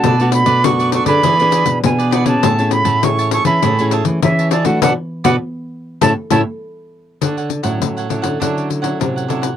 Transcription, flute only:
\new Staff \with { instrumentName = "Flute" } { \time 4/4 \key a \major \tempo 4 = 100 a''8 b''8 cis'''8 cis'''16 b''4~ b''16 gis''8 fis''16 a''16~ | a''8 b''8 cis'''8 cis'''16 b''8. r8 e''8 d''16 fis''16 | fis''16 r8 fis''16 r4 a''16 r16 a''16 r4 r16 | \key d \major r1 | }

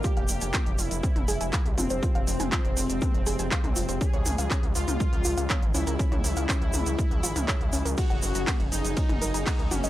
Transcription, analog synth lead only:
\new Staff \with { instrumentName = "Analog synth lead" } { \time 4/4 \key f \minor \tempo 4 = 121 g'4. e'2 c'8~ | c'1 | aes'4. f'2 e'8~ | e'1 |
ges'4. ees'2 des'8 | }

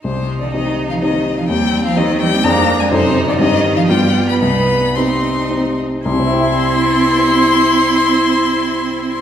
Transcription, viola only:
\new Staff \with { instrumentName = "Viola" } { \time 3/4 \key c \minor \tempo 4 = 113 ees'2. | c'2 d'4 | dis'4 ees'4 f'4 | ees'4 ees'4. r8 |
e'2.~ | e'2. | }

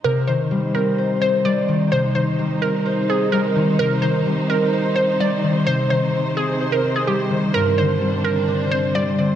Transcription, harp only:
\new Staff \with { instrumentName = "Harp" } { \clef bass \time 4/4 \key c \minor \tempo 4 = 128 c8 ees8 g8 c'8 c''8 c'8 g8 ees8 | c8 ees8 g8 c'8 c''8 c'8 g8 ees8 | c8 ees8 g8 c'8 c''8 c'8 g8 ees8 | c8 ees4 c'8 c''8 c'8 g8 ees8 |
g,8 d8 g8 c'8 d'8 c'8 g8 d8 | }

